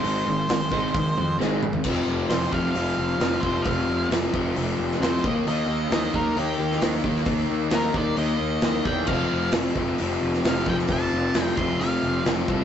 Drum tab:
CC |----------------|x---------------|----------------|----------------|
HH |o---o---o-------|----o---o---o---|o---o---o---o---|o---o---o---o---|
SD |----o-------o---|----o-------o---|----o------oo---|----o------oo--o|
T2 |--------------o-|----------------|----------------|----------------|
FT |---------------o|----------------|----------------|----------------|
BD |------o-o-------|o-----o-------o-|o-----o-------o-|------o-------o-|

CC |----------------|x---------------|----------------|
HH |o---o---o---o---|----o---o---o---|o---o---o---o---|
SD |----o-------o---|----o------oo--o|----o-------o---|
T2 |----------------|----------------|----------------|
FT |----------------|----------------|----------------|
BD |o-----o-------o-|o-----o-------o-|o-----o-------o-|